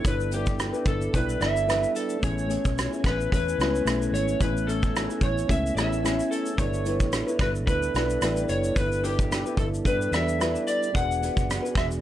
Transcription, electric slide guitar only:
0.08 B4
0.34 G4
0.88 A4
1.15 B4
1.41 E5
1.96 A4
2.23 C#5
3.06 B4
3.33 B4
4.14 C#5
4.41 B4
4.67 A4
5.23 C#5
5.51 E5
5.77 E5
6.31 A4
6.59 C#5
7.41 B4
7.67 B4
8.49 C#5
8.76 B4
9.04 G4
9.58 A4
9.86 B4
10.13 E5
10.67 D5
10.95 F#5
11.77 E5

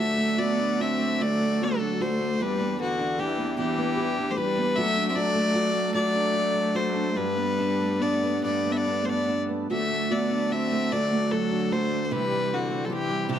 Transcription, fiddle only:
Already playing: E5
0.39 D5
0.81 E5
1.22 D5
1.63 A4
2.01 C5
2.42 B4
2.81 F#4
3.20 G4
3.59 G4
4.30 C5
4.37 B4
4.76 E5
5.09 E5
5.16 D5
5.95 D5
6.76 C5
7.16 B4
8.02 D5
8.44 D5
8.72 E5
8.77 D5
9.05 C5 D5
9.72 E5
10.12 D5
10.52 E5
10.92 D5
11.32 A4
11.72 C5
12.05 C5
12.12 B4
12.54 F#4
12.85 A4
12.92 G4
13.31 G4

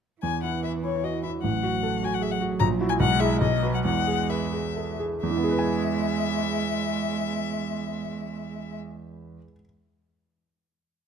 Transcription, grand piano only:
0.23 E2
0.43 E4
0.63 B4
0.83 E4
1.03 F#4
1.23 E4
1.44 A1
1.63 F#4
1.83 A4
2.03 F#4
2.21 G#4
2.41 F#4
2.61 A#1
2.81 E4 F#4
3.00 B1
3.20 E4 G#4
3.41 B1
3.62 F#4 B4
3.85 E2
4.07 G#4
4.30 B4
4.53 G#4
4.76 A4
4.99 G#4
5.23 E2
5.30 E3
5.37 B3
5.44 G#4
5.51 B4
5.59 G#5

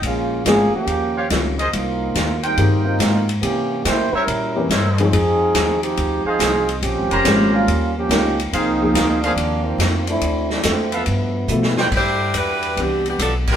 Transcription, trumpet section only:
1.17 G4 C5 C#5 F5
1.59 G#4 A#4 C5 D#5
2.43 A#4 C5 G5
4.14 A#4 C5 C#5 E5
4.71 A#4 C5 C#5 E5
6.26 G#4 C5 D#5 F5
7.10 C#4 A#4 C5 A#5
8.53 G#4 A#4 C5 F5
9.24 G#4 A#4 C5 F5
10.93 A4 B4 E5 F5
11.78 B4 C5 D5 G5

